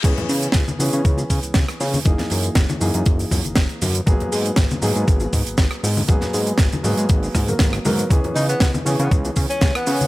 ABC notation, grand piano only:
X:1
M:4/4
L:1/16
Q:"Swing 16ths" 1/4=119
K:C#dor
V:1 name="Grand piano"
[E,B,CG]6 [E,B,CG]8- [E,B,CG]2 | [E,A,DG]6 [E,A,DG]8- [E,A,DG]2 | [F,A,B,G]6 [F,A,B,G]8- [F,A,B,G]2 | [F,A,B,G]6 [F,A,B,G]4- [F,A,B,G] [F,A,B,A]3 [F,A,B,A]2 |
[E,B,CG]6 [E,B,CG]8- [E,B,CG]2 |]